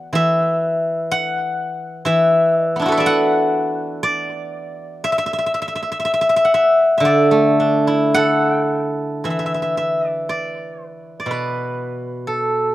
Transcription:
Already playing: E3 B4 D5 F#5
0.13 E3 E5
1.11 F#5
2.05 E3 E5
2.65 D5
2.76 B3 D4
2.82 E4 F#4
2.88 A4 B4
2.98 D5 E5
3.06 F#5
4.03 D5
5.04 E5
5.12 E5
5.18 E5
5.26 E5
5.33 E5
5.38 E5
5.46 E5
5.54 E5
5.62 E5
5.68 E5
5.75 E5
5.83 E5
5.92 E5
6.00 E5
6.05 E5
6.14 E5
6.21 E5
6.29 E5
6.36 E5
6.45 F#5
6.54 E5
6.98 D3 E5
7.05 D5
7.31 A3
7.60 D4
7.87 E4
8.14 A4 F#5
9.24 E3 E5
9.30 E5
9.39 E5
9.46 E5
9.54 E5
9.62 E5
9.77 E5
10.07 D5
10.29 D5
10.88 B4
11.20 D5
11.26 B2
11.31 B4
12.27 A4

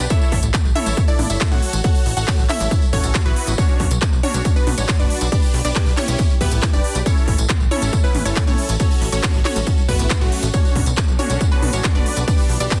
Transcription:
0.00 tambourine
0.10 E4 A4 C#5 E5, kick, closed hi-hat, tambourine
0.21 tambourine
0.32 A1, kick, open hi-hat
0.43 A1, closed hi-hat, tambourine
0.54 kick, clap, closed hi-hat, tambourine
0.65 A1, tambourine
0.75 E4 A4 C#5 E5, open hi-hat, mid tom
0.86 A1, closed hi-hat, tambourine
0.97 kick, closed hi-hat, tambourine
1.08 D4 E4 A4 D5, tambourine
1.19 A1, open hi-hat, mid tom
1.30 G1 E4 A4 C#5 E5, closed hi-hat, tambourine
1.41 kick, clap, closed hi-hat
1.51 A2 F#4 A4 C#5 F#5, mid tom, tambourine
1.62 open hi-hat
1.73 A1, closed hi-hat, tambourine
1.84 F#4 A4 C#5 F#5, kick, closed hi-hat, tambourine
1.95 open hi-hat, tambourine
2.06 A1, open hi-hat
2.17 A1 F#4 A4 C#5 F#5, closed hi-hat, tambourine
2.28 kick, clap, closed hi-hat, tambourine
2.39 A1, tambourine
2.49 E4 A4 C#5 E5, clap, open hi-hat, mid tom
2.60 A1, closed hi-hat, tambourine
2.71 kick, closed hi-hat, mid tom, tambourine
2.82 tambourine
2.93 A1 C#4 F#4 A4 C#5, kick, open hi-hat
3.03 A1, closed hi-hat, tambourine
3.14 kick, clap, closed hi-hat, tambourine
3.25 A1 B3 E4 F#4 B4, tambourine
3.36 open hi-hat
3.47 A1, closed hi-hat, tambourine
3.58 C#4 D4 F#4 C#5, kick, closed hi-hat, tambourine
3.69 tambourine
3.80 B1, kick, open hi-hat
3.91 B1, closed hi-hat, tambourine
4.02 kick, clap, closed hi-hat, tambourine
4.13 B1, tambourine
4.23 C#4 D4 F#4 C#5, open hi-hat, mid tom
4.34 B1, closed hi-hat, tambourine
4.45 kick, closed hi-hat, tambourine
4.56 B3 D4 F#4 B4, tambourine
4.67 B1, open hi-hat, mid tom
4.78 A1 C#4 D4 F#4 C#5, closed hi-hat, tambourine
4.89 kick, clap, closed hi-hat, tambourine
4.99 F#1 D4 F#4 B4 D5, mid tom, tambourine
5.10 open hi-hat
5.21 B1, closed hi-hat, tambourine
5.32 D4 G4 B4 D5, kick, closed hi-hat, tambourine
5.42 open hi-hat, tambourine
5.54 B1, open hi-hat
5.65 B1 D4 G4 B4 D5, closed hi-hat, tambourine
5.76 kick, clap, closed hi-hat, tambourine
5.86 B1, tambourine
5.97 C#4 E4 G4 C#5, clap, open hi-hat, mid tom
6.08 B1, closed hi-hat, tambourine
6.18 kick, closed hi-hat, mid tom, tambourine
6.30 tambourine
6.41 B1 B3 E4 G4 B4, kick, open hi-hat
6.51 A1, closed hi-hat, tambourine
6.62 kick, clap, closed hi-hat, tambourine
6.73 F#1 D4 G4 B4 D5, tambourine
6.84 open hi-hat
6.95 B1, closed hi-hat, tambourine
7.06 C#4 E4 A4 C#5, kick, closed hi-hat, tambourine
7.17 tambourine
7.28 A1, kick, open hi-hat
7.38 A1, closed hi-hat, tambourine
7.49 kick, clap, closed hi-hat, tambourine
7.60 A1, tambourine
7.71 C#4 E4 A4 C#5, open hi-hat, mid tom
7.82 A1, closed hi-hat, tambourine
7.93 kick, closed hi-hat, tambourine
8.04 B3 C#4 E4 B4, tambourine
8.15 A1, open hi-hat, mid tom
8.25 G1 C#4 E4 A4 C#5, closed hi-hat, tambourine
8.36 kick, clap, closed hi-hat, tambourine
8.47 A2 C#4 E4 A4 C#5, mid tom, tambourine
8.58 open hi-hat
8.69 A1, closed hi-hat, tambourine
8.80 C#4 F#4 A4 C#5, kick, closed hi-hat, tambourine
8.91 open hi-hat, tambourine
9.02 A1, open hi-hat
9.12 A1 C#4 F#4 A4 C#5, closed hi-hat, tambourine
9.23 kick, clap, closed hi-hat, tambourine
9.34 A1, tambourine
9.45 C#4 F#4 A4 C#5, clap, open hi-hat, mid tom
9.56 A1, closed hi-hat, tambourine
9.66 kick, closed hi-hat, mid tom, tambourine
9.78 tambourine
9.89 A1 B3 E4 F#4 B4, kick, open hi-hat
9.99 A1, closed hi-hat, tambourine
10.10 kick, clap, closed hi-hat, tambourine
10.21 A1 F#3 A3 C#4 F#4, tambourine
10.32 open hi-hat
10.43 A1, closed hi-hat, tambourine
10.53 D3 B3 C#4 D4 F#4 C#5, kick, closed hi-hat, tambourine
10.65 tambourine
10.76 B1, kick, open hi-hat
10.86 B1, closed hi-hat, tambourine
10.97 kick, clap, closed hi-hat, tambourine
11.08 B1, tambourine
11.19 C#4 D4 F#4 C#5, open hi-hat, mid tom
11.30 B1, closed hi-hat, tambourine
11.41 kick, closed hi-hat, tambourine
11.52 B3 D4 F#4 B4, tambourine
11.62 B1, open hi-hat, mid tom
11.73 A1 C#4 D4 F#4 C#5, closed hi-hat, tambourine
11.84 kick, clap, closed hi-hat, tambourine
11.95 F#1 D4 F#4 B4 D5, mid tom, tambourine
12.06 open hi-hat
12.16 B1, closed hi-hat, tambourine
12.28 E3 G3 D4 G4 B4 D5, kick, closed hi-hat, tambourine
12.38 open hi-hat, tambourine
12.49 B1, open hi-hat
12.60 B1 D4 G4 B4 D5, closed hi-hat, tambourine
12.70 kick, clap, closed hi-hat, tambourine

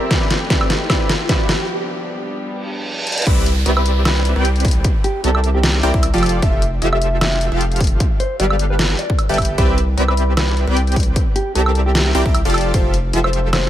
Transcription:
Already playing: F3 A3 C4 E4 G4, riser
0.11 C4 G4 B4 D5 E5, kick, snare, closed hi-hat
0.30 snare, closed hi-hat
0.50 C4 G4 B4 D5 E5, kick, snare, closed hi-hat
0.61 high woodblock
0.70 snare, closed hi-hat
0.90 C4 G4 B4 D5 E5, kick, snare, closed hi-hat, high woodblock
1.09 snare, closed hi-hat
1.29 C4 G4 B4 D5 E5, kick, snare, closed hi-hat
1.49 snare, closed hi-hat
1.69 G3 B3 D4
2.48 reverse cymbal
3.07 closed hi-hat
3.12 closed hi-hat
3.18 closed hi-hat
3.22 closed hi-hat
3.26 C2 C4 G4 B4 D5 E5, kick, closed hi-hat, crash, downlifter
3.46 closed hi-hat
3.66 C2 C4 G4 B4 D5 E5, closed hi-hat
3.77 B4, high woodblock
3.86 closed hi-hat
4.05 B4, snare, closed hi-hat, high woodblock
4.25 closed hi-hat
4.36 C2 C4 G4 B4 D5 G5
4.45 closed hi-hat
4.56 closed hi-hat
4.60 closed hi-hat
4.65 kick, closed hi-hat, open hi-hat
4.71 closed hi-hat
4.84 kick, closed hi-hat
5.04 G4, closed hi-hat
5.24 C2 C4 G4 A4 A#4 D5 E5, closed hi-hat
5.35 high woodblock
5.44 closed hi-hat
5.54 G4
5.63 snare, closed hi-hat
5.83 C2 C4 E4 G4 A#4 D5 G5, closed hi-hat
5.94 C2 G4 D5, kick
6.03 closed hi-hat, high woodblock
6.14 F1 F3 F4 G4 A4 D5, closed hi-hat
6.18 closed hi-hat
6.23 closed hi-hat, open hi-hat, high woodblock
6.29 closed hi-hat
6.42 F1 F3 F4 G4 A4 E5, kick, closed hi-hat
6.62 closed hi-hat
6.82 F1 F3 F4 G4 A4 E5, closed hi-hat
6.93 E5, high woodblock
7.02 closed hi-hat
7.21 E5, snare, closed hi-hat, high woodblock
7.41 closed hi-hat
7.52 F1 F3 F4 G4 A4 F5
7.61 closed hi-hat
7.72 closed hi-hat
7.76 closed hi-hat
7.81 kick, closed hi-hat, open hi-hat
7.87 closed hi-hat
8.00 kick, closed hi-hat
8.20 C5, closed hi-hat
8.40 G1 G3 G4 A4 B4 D5 F5, closed hi-hat
8.50 high woodblock
8.59 closed hi-hat
8.70 B4
8.79 snare, closed hi-hat
8.99 D5, closed hi-hat
9.10 kick
9.19 closed hi-hat, high woodblock
9.29 G1 G3 G4 A4 B4 E5 G5, closed hi-hat
9.34 closed hi-hat
9.38 kick, closed hi-hat, open hi-hat, high woodblock
9.45 closed hi-hat
9.58 C2 C4 G4 B4 D5 E5, kick, closed hi-hat
9.78 closed hi-hat
9.98 C2 C4 G4 B4 D5 E5, closed hi-hat
10.08 B4, high woodblock
10.17 closed hi-hat
10.37 B4, snare, closed hi-hat, high woodblock
10.57 closed hi-hat
10.68 C2 C4 G4 B4 D5 G5
10.77 closed hi-hat
10.87 closed hi-hat
10.92 closed hi-hat
10.96 kick, closed hi-hat, open hi-hat
11.03 closed hi-hat
11.16 kick, closed hi-hat
11.36 G4, closed hi-hat
11.55 C2 C4 G4 A4 A#4 D5 E5, closed hi-hat
11.66 high woodblock
11.75 closed hi-hat
11.86 G4
11.95 snare, closed hi-hat
12.15 C2 C4 E4 G4 A#4 D5 G5, closed hi-hat
12.26 C2 C4, kick
12.35 closed hi-hat, high woodblock
12.45 F1 F3 F4 G4 A4 D5, closed hi-hat
12.50 closed hi-hat
12.54 closed hi-hat, open hi-hat, high woodblock
12.61 closed hi-hat
12.74 F1 F3 F4 G4 A4 C5 E5, kick, closed hi-hat
12.94 closed hi-hat
13.13 F1 F3 F4 G4 A4 E5, closed hi-hat
13.24 C5, high woodblock
13.33 closed hi-hat
13.53 C5, snare, closed hi-hat, high woodblock

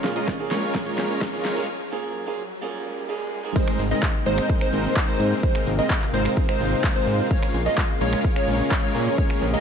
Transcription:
Already playing: G#4 C#5 F5 A#5, riser
0.04 A#1 A#2 A#3 C#4 F4 G#4, snare, open hi-hat
0.16 G#3 C#4 F4 A#4 D#5, open hi-hat
0.28 kick, snare, closed hi-hat
0.39 A#2 A#3 C#4 F4 G#4, closed hi-hat
0.51 A#1 G#3 C#4 F4 A#4 C#5, snare, open hi-hat
0.63 closed hi-hat
0.74 A#2 A#3 C#4 F4 G#4, kick, snare, closed hi-hat
0.86 G#3 C#4 F4 A#4 C#5, closed hi-hat
0.98 A#1, snare, open hi-hat
1.10 closed hi-hat
1.21 A#2 A#3 C#4 F4 G#4, kick, snare, closed hi-hat
1.33 G#3 C#4 F4 A#4 C#5, closed hi-hat
1.45 A#2, snare, open hi-hat
1.56 A#2 A#3 C#4 F4 G#4, closed hi-hat
1.91 A#2 A#3 C#4 F4 G#4
2.26 A#2 A#3 C#4 F4 G#4
2.61 A#2 A#3 C#4 F4 G#4, swell
3.08 A#2 A#3 C#4 F4 G#4
3.43 G#2 A#3 C#4 F4 G#4
3.56 C3 G#3 A#3 C4 D#4 A#4 C5, kick, closed hi-hat, crash
3.68 finger snap, closed hi-hat
3.79 G#1, open hi-hat
3.91 G#3 C4 D#4 A#4 D#5, open hi-hat
4.03 kick, clap, closed hi-hat
4.14 closed hi-hat
4.26 G#1 G#3 C4 D#4 A#4 C5, open hi-hat
4.38 finger snap, closed hi-hat
4.50 kick, closed hi-hat
4.61 G#3 C4 D#4 A#4 C5, finger snap, closed hi-hat
4.73 G#1, open hi-hat
4.85 closed hi-hat
4.96 kick, clap, closed hi-hat
5.08 G#3 C4 D#4 A#4 C5, closed hi-hat
5.20 G#2, open hi-hat
5.32 closed hi-hat
5.43 C4 F4 A#4 C5, kick, closed hi-hat
5.55 finger snap, open hi-hat
5.67 G#1, open hi-hat
5.79 G#3 C4 D#4 A#4 D#5, closed hi-hat
5.90 kick, clap, closed hi-hat
6.02 clap, closed hi-hat
6.13 G#1 G#3 C4 D#4 A#4 C5, open hi-hat
6.25 finger snap, closed hi-hat
6.37 kick, closed hi-hat
6.49 G#3 C4 D#4 A#4 C5, finger snap, closed hi-hat
6.60 G#1, open hi-hat
6.72 closed hi-hat
6.84 kick, clap, closed hi-hat
6.96 G#3 C4 D#4 A#4 C5, closed hi-hat
7.07 G#2, open hi-hat
7.19 closed hi-hat
7.31 C#3 G#3 A#3 C#4 F4 A#4 C#5, kick, closed hi-hat
7.43 finger snap, closed hi-hat
7.54 A#1, open hi-hat
7.66 G#3 C#4 F4 A#4 D#5, open hi-hat
7.78 kick, clap, closed hi-hat
7.89 closed hi-hat
8.01 A#1 G#3 C#4 F4 A#4 C#5, open hi-hat
8.13 finger snap, closed hi-hat
8.24 kick, closed hi-hat
8.36 G#3 C#4 F4 A#4 C#5, finger snap, closed hi-hat
8.48 A#1, open hi-hat
8.60 closed hi-hat
8.71 kick, clap, closed hi-hat
8.83 G#3 C#4 F4 A#4 C#5, closed hi-hat
8.95 A#2, open hi-hat
9.07 closed hi-hat
9.18 G#3 C#4 F4 G4 A#4 C#5, kick, closed hi-hat
9.30 finger snap, open hi-hat
9.42 A#1, open hi-hat
9.53 G#3 C#4 F4 A#4 D#5, closed hi-hat

